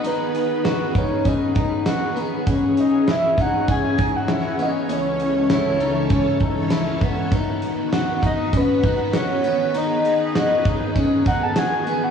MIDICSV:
0, 0, Header, 1, 5, 480
1, 0, Start_track
1, 0, Tempo, 606061
1, 38, Time_signature, 4, 2, 24, 8
1, 9588, End_track
2, 0, Start_track
2, 0, Title_t, "Soft synth lead"
2, 0, Program_c, 0, 80
2, 54, Note_on_c, 0, 71, 96
2, 775, Note_on_c, 0, 73, 86
2, 787, Note_off_c, 0, 71, 0
2, 1013, Note_on_c, 0, 75, 86
2, 1024, Note_off_c, 0, 73, 0
2, 1485, Note_off_c, 0, 75, 0
2, 2217, Note_on_c, 0, 75, 81
2, 2458, Note_on_c, 0, 76, 94
2, 2470, Note_off_c, 0, 75, 0
2, 2698, Note_on_c, 0, 78, 93
2, 2710, Note_off_c, 0, 76, 0
2, 2928, Note_off_c, 0, 78, 0
2, 2939, Note_on_c, 0, 80, 110
2, 3296, Note_on_c, 0, 78, 99
2, 3308, Note_off_c, 0, 80, 0
2, 3660, Note_on_c, 0, 75, 85
2, 3671, Note_off_c, 0, 78, 0
2, 3902, Note_on_c, 0, 73, 90
2, 3914, Note_off_c, 0, 75, 0
2, 4370, Note_off_c, 0, 73, 0
2, 4378, Note_on_c, 0, 73, 76
2, 5296, Note_off_c, 0, 73, 0
2, 6540, Note_on_c, 0, 75, 106
2, 6786, Note_on_c, 0, 71, 95
2, 6798, Note_off_c, 0, 75, 0
2, 7264, Note_on_c, 0, 73, 92
2, 7276, Note_off_c, 0, 71, 0
2, 7741, Note_on_c, 0, 75, 112
2, 7752, Note_off_c, 0, 73, 0
2, 8926, Note_off_c, 0, 75, 0
2, 8931, Note_on_c, 0, 78, 92
2, 9053, Note_on_c, 0, 81, 109
2, 9065, Note_off_c, 0, 78, 0
2, 9174, Note_on_c, 0, 80, 104
2, 9186, Note_off_c, 0, 81, 0
2, 9533, Note_on_c, 0, 78, 96
2, 9545, Note_off_c, 0, 80, 0
2, 9588, Note_off_c, 0, 78, 0
2, 9588, End_track
3, 0, Start_track
3, 0, Title_t, "Clean electric guitar"
3, 0, Program_c, 1, 27
3, 33, Note_on_c, 1, 63, 76
3, 512, Note_on_c, 1, 66, 80
3, 516, Note_off_c, 1, 63, 0
3, 754, Note_on_c, 1, 63, 58
3, 755, Note_off_c, 1, 66, 0
3, 987, Note_off_c, 1, 63, 0
3, 990, Note_on_c, 1, 61, 76
3, 1228, Note_off_c, 1, 61, 0
3, 1231, Note_on_c, 1, 63, 64
3, 1474, Note_off_c, 1, 63, 0
3, 1474, Note_on_c, 1, 66, 73
3, 1711, Note_on_c, 1, 59, 71
3, 1716, Note_off_c, 1, 66, 0
3, 1952, Note_off_c, 1, 59, 0
3, 1955, Note_on_c, 1, 61, 76
3, 2436, Note_off_c, 1, 61, 0
3, 2436, Note_on_c, 1, 64, 70
3, 2677, Note_off_c, 1, 64, 0
3, 2679, Note_on_c, 1, 63, 72
3, 2917, Note_off_c, 1, 63, 0
3, 2920, Note_on_c, 1, 61, 81
3, 3155, Note_off_c, 1, 61, 0
3, 3159, Note_on_c, 1, 63, 63
3, 3393, Note_on_c, 1, 64, 73
3, 3398, Note_off_c, 1, 63, 0
3, 3636, Note_off_c, 1, 64, 0
3, 3636, Note_on_c, 1, 59, 71
3, 3872, Note_off_c, 1, 59, 0
3, 3875, Note_on_c, 1, 61, 85
3, 4357, Note_off_c, 1, 61, 0
3, 4358, Note_on_c, 1, 64, 75
3, 4598, Note_off_c, 1, 64, 0
3, 4598, Note_on_c, 1, 63, 72
3, 4836, Note_off_c, 1, 63, 0
3, 4840, Note_on_c, 1, 61, 77
3, 5077, Note_off_c, 1, 61, 0
3, 5080, Note_on_c, 1, 63, 61
3, 5319, Note_off_c, 1, 63, 0
3, 5321, Note_on_c, 1, 64, 70
3, 5559, Note_off_c, 1, 64, 0
3, 5561, Note_on_c, 1, 59, 76
3, 5797, Note_off_c, 1, 59, 0
3, 5800, Note_on_c, 1, 63, 84
3, 6278, Note_on_c, 1, 66, 81
3, 6279, Note_off_c, 1, 63, 0
3, 6518, Note_off_c, 1, 66, 0
3, 6518, Note_on_c, 1, 63, 70
3, 6758, Note_off_c, 1, 63, 0
3, 6761, Note_on_c, 1, 61, 86
3, 6998, Note_off_c, 1, 61, 0
3, 7001, Note_on_c, 1, 63, 70
3, 7238, Note_on_c, 1, 66, 73
3, 7240, Note_off_c, 1, 63, 0
3, 7478, Note_off_c, 1, 66, 0
3, 7481, Note_on_c, 1, 59, 75
3, 7718, Note_off_c, 1, 59, 0
3, 7721, Note_on_c, 1, 63, 82
3, 8199, Note_off_c, 1, 63, 0
3, 8202, Note_on_c, 1, 66, 73
3, 8440, Note_off_c, 1, 66, 0
3, 8442, Note_on_c, 1, 63, 73
3, 8677, Note_off_c, 1, 63, 0
3, 8681, Note_on_c, 1, 61, 87
3, 8915, Note_off_c, 1, 61, 0
3, 8918, Note_on_c, 1, 63, 69
3, 9158, Note_off_c, 1, 63, 0
3, 9159, Note_on_c, 1, 66, 67
3, 9398, Note_off_c, 1, 66, 0
3, 9400, Note_on_c, 1, 59, 66
3, 9588, Note_off_c, 1, 59, 0
3, 9588, End_track
4, 0, Start_track
4, 0, Title_t, "String machine"
4, 0, Program_c, 2, 50
4, 0, Note_on_c, 2, 51, 63
4, 0, Note_on_c, 2, 59, 58
4, 0, Note_on_c, 2, 71, 74
4, 35, Note_on_c, 2, 68, 62
4, 1927, Note_off_c, 2, 59, 0
4, 1928, Note_off_c, 2, 51, 0
4, 1928, Note_off_c, 2, 71, 0
4, 1954, Note_on_c, 2, 73, 72
4, 1955, Note_on_c, 2, 52, 70
4, 1955, Note_on_c, 2, 61, 60
4, 3845, Note_off_c, 2, 68, 0
4, 3857, Note_off_c, 2, 52, 0
4, 3872, Note_on_c, 2, 69, 55
4, 3873, Note_on_c, 2, 37, 70
4, 3873, Note_on_c, 2, 52, 58
4, 5764, Note_off_c, 2, 73, 0
4, 5765, Note_off_c, 2, 61, 0
4, 5776, Note_off_c, 2, 37, 0
4, 5776, Note_off_c, 2, 52, 0
4, 5776, Note_off_c, 2, 69, 0
4, 5791, Note_on_c, 2, 51, 71
4, 5792, Note_on_c, 2, 59, 59
4, 5792, Note_on_c, 2, 66, 62
4, 5794, Note_on_c, 2, 71, 85
4, 7696, Note_off_c, 2, 66, 0
4, 7716, Note_on_c, 2, 68, 64
4, 9588, Note_off_c, 2, 51, 0
4, 9588, Note_off_c, 2, 59, 0
4, 9588, Note_off_c, 2, 68, 0
4, 9588, Note_off_c, 2, 71, 0
4, 9588, End_track
5, 0, Start_track
5, 0, Title_t, "Drums"
5, 36, Note_on_c, 9, 42, 65
5, 115, Note_off_c, 9, 42, 0
5, 275, Note_on_c, 9, 42, 51
5, 355, Note_off_c, 9, 42, 0
5, 513, Note_on_c, 9, 42, 52
5, 515, Note_on_c, 9, 38, 99
5, 592, Note_off_c, 9, 42, 0
5, 594, Note_off_c, 9, 38, 0
5, 754, Note_on_c, 9, 36, 81
5, 757, Note_on_c, 9, 42, 47
5, 833, Note_off_c, 9, 36, 0
5, 836, Note_off_c, 9, 42, 0
5, 992, Note_on_c, 9, 42, 56
5, 994, Note_on_c, 9, 36, 80
5, 1071, Note_off_c, 9, 42, 0
5, 1073, Note_off_c, 9, 36, 0
5, 1231, Note_on_c, 9, 42, 50
5, 1236, Note_on_c, 9, 36, 80
5, 1311, Note_off_c, 9, 42, 0
5, 1315, Note_off_c, 9, 36, 0
5, 1472, Note_on_c, 9, 42, 60
5, 1474, Note_on_c, 9, 38, 94
5, 1551, Note_off_c, 9, 42, 0
5, 1553, Note_off_c, 9, 38, 0
5, 1717, Note_on_c, 9, 42, 41
5, 1796, Note_off_c, 9, 42, 0
5, 1955, Note_on_c, 9, 42, 67
5, 1956, Note_on_c, 9, 36, 83
5, 2034, Note_off_c, 9, 42, 0
5, 2035, Note_off_c, 9, 36, 0
5, 2196, Note_on_c, 9, 42, 50
5, 2275, Note_off_c, 9, 42, 0
5, 2436, Note_on_c, 9, 42, 46
5, 2438, Note_on_c, 9, 38, 92
5, 2515, Note_off_c, 9, 42, 0
5, 2517, Note_off_c, 9, 38, 0
5, 2675, Note_on_c, 9, 36, 72
5, 2675, Note_on_c, 9, 42, 53
5, 2754, Note_off_c, 9, 36, 0
5, 2754, Note_off_c, 9, 42, 0
5, 2914, Note_on_c, 9, 42, 59
5, 2916, Note_on_c, 9, 36, 81
5, 2993, Note_off_c, 9, 42, 0
5, 2995, Note_off_c, 9, 36, 0
5, 3152, Note_on_c, 9, 42, 51
5, 3157, Note_on_c, 9, 36, 78
5, 3231, Note_off_c, 9, 42, 0
5, 3236, Note_off_c, 9, 36, 0
5, 3390, Note_on_c, 9, 42, 56
5, 3392, Note_on_c, 9, 38, 86
5, 3469, Note_off_c, 9, 42, 0
5, 3471, Note_off_c, 9, 38, 0
5, 3635, Note_on_c, 9, 42, 44
5, 3714, Note_off_c, 9, 42, 0
5, 3876, Note_on_c, 9, 42, 63
5, 3955, Note_off_c, 9, 42, 0
5, 4116, Note_on_c, 9, 42, 49
5, 4195, Note_off_c, 9, 42, 0
5, 4353, Note_on_c, 9, 42, 52
5, 4355, Note_on_c, 9, 38, 96
5, 4432, Note_off_c, 9, 42, 0
5, 4434, Note_off_c, 9, 38, 0
5, 4596, Note_on_c, 9, 42, 50
5, 4675, Note_off_c, 9, 42, 0
5, 4831, Note_on_c, 9, 42, 56
5, 4834, Note_on_c, 9, 36, 80
5, 4910, Note_off_c, 9, 42, 0
5, 4913, Note_off_c, 9, 36, 0
5, 5071, Note_on_c, 9, 42, 48
5, 5076, Note_on_c, 9, 36, 75
5, 5150, Note_off_c, 9, 42, 0
5, 5155, Note_off_c, 9, 36, 0
5, 5310, Note_on_c, 9, 42, 63
5, 5311, Note_on_c, 9, 38, 98
5, 5389, Note_off_c, 9, 42, 0
5, 5391, Note_off_c, 9, 38, 0
5, 5554, Note_on_c, 9, 42, 43
5, 5555, Note_on_c, 9, 36, 73
5, 5633, Note_off_c, 9, 42, 0
5, 5634, Note_off_c, 9, 36, 0
5, 5794, Note_on_c, 9, 42, 65
5, 5795, Note_on_c, 9, 36, 90
5, 5873, Note_off_c, 9, 42, 0
5, 5874, Note_off_c, 9, 36, 0
5, 6034, Note_on_c, 9, 42, 51
5, 6114, Note_off_c, 9, 42, 0
5, 6275, Note_on_c, 9, 42, 45
5, 6277, Note_on_c, 9, 38, 95
5, 6354, Note_off_c, 9, 42, 0
5, 6356, Note_off_c, 9, 38, 0
5, 6515, Note_on_c, 9, 36, 78
5, 6518, Note_on_c, 9, 42, 50
5, 6594, Note_off_c, 9, 36, 0
5, 6598, Note_off_c, 9, 42, 0
5, 6755, Note_on_c, 9, 42, 58
5, 6756, Note_on_c, 9, 36, 82
5, 6835, Note_off_c, 9, 36, 0
5, 6835, Note_off_c, 9, 42, 0
5, 6993, Note_on_c, 9, 42, 46
5, 6997, Note_on_c, 9, 36, 81
5, 7073, Note_off_c, 9, 42, 0
5, 7077, Note_off_c, 9, 36, 0
5, 7233, Note_on_c, 9, 42, 62
5, 7235, Note_on_c, 9, 38, 96
5, 7312, Note_off_c, 9, 42, 0
5, 7314, Note_off_c, 9, 38, 0
5, 7477, Note_on_c, 9, 42, 49
5, 7556, Note_off_c, 9, 42, 0
5, 7719, Note_on_c, 9, 42, 69
5, 7798, Note_off_c, 9, 42, 0
5, 7959, Note_on_c, 9, 42, 47
5, 8038, Note_off_c, 9, 42, 0
5, 8198, Note_on_c, 9, 42, 47
5, 8200, Note_on_c, 9, 38, 94
5, 8278, Note_off_c, 9, 42, 0
5, 8280, Note_off_c, 9, 38, 0
5, 8437, Note_on_c, 9, 36, 90
5, 8439, Note_on_c, 9, 42, 50
5, 8516, Note_off_c, 9, 36, 0
5, 8519, Note_off_c, 9, 42, 0
5, 8678, Note_on_c, 9, 36, 77
5, 8678, Note_on_c, 9, 42, 59
5, 8757, Note_off_c, 9, 36, 0
5, 8757, Note_off_c, 9, 42, 0
5, 8917, Note_on_c, 9, 42, 50
5, 8919, Note_on_c, 9, 36, 79
5, 8996, Note_off_c, 9, 42, 0
5, 8999, Note_off_c, 9, 36, 0
5, 9154, Note_on_c, 9, 42, 68
5, 9155, Note_on_c, 9, 38, 96
5, 9233, Note_off_c, 9, 42, 0
5, 9235, Note_off_c, 9, 38, 0
5, 9399, Note_on_c, 9, 42, 43
5, 9478, Note_off_c, 9, 42, 0
5, 9588, End_track
0, 0, End_of_file